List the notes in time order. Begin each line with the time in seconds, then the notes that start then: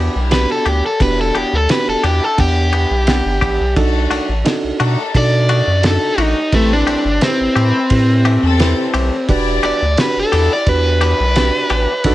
Already playing: B3 D4 F#4 G4
0.00 E3
0.15 B1 D4 E4 G4
0.31 B3 D4 F#4 G4 B4, snare, ride
0.52 A4
0.66 D2 E3 B3 D4 G4, ride
0.86 A4
0.99 E1 B3 D4 E4 F#4 G4 B4, kick, ride
1.21 A4
1.35 E1 E3 B3 D4 G4, ride
1.53 D2 A4
1.69 B3 D4 F#4 G4 B4, snare, ride
1.88 E1 A4
2.03 E2 E3 B3 D4 E4 G4, ride
2.24 A4
2.38 E2 B3 D4 G4 F#5, kick, ride
2.73 E3 B3 D4 G4, ride
2.91 B1 D4 E4 G4
3.07 B3 D4 G4 F#5, snare, ride
3.25 G1
3.41 A1 E3 B3 D4 G4, kick, ride
3.60 B1
3.76 B1 D4 D#4 F#4 A4, kick, ride
4.10 B1 D#3 A3 D4 F#4, ride
4.29 A1
4.45 D4 D#4 F#4 A4, snare, ride
4.64 B1
4.79 B2 D#3 A3 D4 D#4 F#4 A4, ride
5.14 B2 D4 D#4 F#4 A4 D5, kick, ride
5.49 D#3 A3 D4 F#4, ride
5.67 F#2 D4 D#4 F#4
5.83 D4 D#4 F#4 A4, snare, ride
6.18 A1 D#3 A3 D4 D#4 F#4, ride
6.52 A1 A3 C4 E4 G4 A4 B4, kick, ride
6.73 D4
6.87 A1 E3 A3 C4 G4, ride
7.05 G1
7.21 C4 E4 G4 B4, snare, ride
7.40 A1
7.56 A2 E3 A3 C4 G4 B4, ride
7.90 A2 C4 E4 G4 B4, kick, ride
8.25 E3 A3 C4 G4, ride
8.43 E2 C4 G4 A4
8.60 C4 E4 G4 B4, snare, ride
8.94 B1 E3 A3 C4 G4, ride
9.27 E1 D4 E4 F#4 G4 B4 D5, kick, ride
9.63 E1 E3 B3 D4 G4 D5, ride
9.82 D2
9.97 D4 F#4 G4 B4, snare, ride
10.17 E1 A4
10.32 E2 E3 B3 D4 E4 G4 D5, ride
10.53 D5
10.66 E2 D4 F#4 G4 B4, kick, ride
11.01 E3 B3 D4 G4 B4, ride
11.18 B1 E4 G4 D5
11.36 D4 F#4 G4 B4, snare, ride
11.70 A1 E3 B3 D4 G4, ride
12.04 B1 D4 D#4 F#4 A4 D5, kick, ride